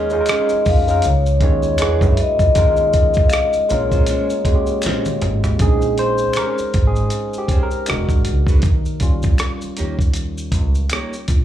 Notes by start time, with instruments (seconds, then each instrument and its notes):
Already playing: upright bass D#2, tine electric piano G#3 C#4 D#4 F4 A#4, nylon-string guitar C#4 F4 G#4 D#5, vibraphone D#5
0.10 tine electric piano G#3 C#4 D#4 F4, maracas
0.14 tine electric piano G#4
0.21 tine electric piano A#4
0.26 nylon-string guitar C#4 F4, finger snap, cross-stick, closed hi-hat, maracas
0.30 nylon-string guitar G#4 D#5
0.49 muted upright bass stroke, maracas
0.65 upright bass F2, vibraphone F5, kick, open hi-hat, maracas
0.88 tine electric piano G#3 C#4 D#4 F4 A#4, vibraphone F5, maracas
1.02 upright bass C#2, vibraphone C#5, closed hi-hat, maracas
1.26 maracas
1.41 upright bass D#2, tine electric piano G#3 C#4 D#4 F4, kick, closed hi-hat
1.45 tine electric piano C#5
1.63 maracas
1.78 upright bass E2, tine electric piano G#3 D4 E4 F#4, nylon-string guitar B3 F#4 G#4, finger snap, cross-stick, closed hi-hat, maracas
1.82 tine electric piano B4, nylon-string guitar D5
2.01 upright bass F#2, kick, maracas
2.12 vibraphone E5
2.17 vibraphone D#5, closed hi-hat
2.39 upright bass C#2, kick, maracas
2.55 upright bass D#2, tine electric piano G#3 C#4 D#4 F4 A#4, kick, closed hi-hat, maracas
2.76 maracas
2.93 kick, closed hi-hat, maracas
3.14 kick, maracas
3.27 vibraphone F5, finger snap, maracas
3.33 vibraphone D#5, cross-stick, closed hi-hat
3.53 muted upright bass stroke, maracas
3.69 upright bass A#1, tine electric piano G#3 A#3 C#4 F4 A#4, closed hi-hat, maracas
3.73 vibraphone C#5
3.92 nylon-string guitar G#3 C#4 F4 C5, kick, maracas
4.06 nylon-string guitar G#3 C#4 F4 C5, closed hi-hat, maracas
4.30 maracas
4.45 tine electric piano G#3 A#3 C#4 F4 F#4, kick, closed hi-hat
4.55 tine electric piano G4
4.67 maracas
4.82 upright bass A#1, nylon-string guitar G#3 C#4 F4 C5, finger snap, closed hi-hat, maracas
4.86 snare
5.05 high tom, maracas
5.22 upright bass G#1, closed hi-hat, mid tom
5.44 floor tom, maracas
5.59 upright bass A#1, tine electric piano G#3 C4 C#4 D#4 G#4, kick, closed hi-hat, maracas
5.82 maracas
5.97 tine electric piano C5, closed hi-hat, maracas
6.18 maracas
6.33 nylon-string guitar C#4 D#4, tine electric piano A#4, finger snap, cross-stick, closed hi-hat, maracas
6.37 nylon-string guitar G#4 C5
6.58 muted upright bass stroke, maracas
6.74 upright bass G#1, kick, closed hi-hat, maracas
6.87 tine electric piano G#4
6.96 maracas
7.10 closed hi-hat, maracas
7.34 maracas
7.38 tine electric piano G4
7.48 nylon-string guitar C#4 D#4 G#4 C5, kick, closed hi-hat, maracas
7.63 tine electric piano A#4
7.71 maracas
7.86 upright bass E1, tine electric piano G#3 D4 F#4, finger snap, cross-stick, closed hi-hat, maracas
8.09 upright bass G#1, kick, maracas
8.25 upright bass C#2, closed hi-hat, maracas
8.47 nylon-string guitar G#3 D4 F#4 B4, kick, maracas
8.62 upright bass D#2, kick, closed hi-hat, maracas
8.86 maracas
9.00 tine electric piano G3 C#4 F4, kick, closed hi-hat, maracas
9.23 kick, maracas
9.38 finger snap, cross-stick, closed hi-hat, maracas
9.61 muted upright bass stroke, maracas
9.77 upright bass D#2, nylon-string guitar A#3 D#4 G4 C#5, closed hi-hat, maracas
9.99 kick, maracas
10.13 closed hi-hat, maracas
10.38 maracas
10.52 upright bass C#2, kick, closed hi-hat, maracas
10.75 maracas
10.90 nylon-string guitar A#3 D#4 G4 C#5, finger snap, cross-stick, closed hi-hat, maracas
11.13 maracas
11.28 upright bass A#1, kick, closed hi-hat, maracas